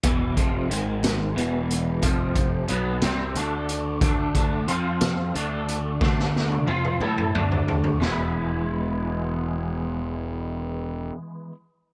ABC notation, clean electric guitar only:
X:1
M:6/8
L:1/8
Q:3/8=60
K:none
V:1 name="Clean electric guitar" clef=bass
[E,,B,,E,] [F,,C,F,] [^G,,^D,^G,]2 [E,,B,,E,]2 | [F,,C,F,]2 [B,,^F,B,] [C,G,C] [D,A,D]2 | [D,A,D] [D,A,D] [F,CF]2 [D,A,D]2 | [D,A,D]2 [F,CF] [A,EA] [D,A,D]2 |
[E,^G,B,E]6- | [E,^G,B,E]6 |]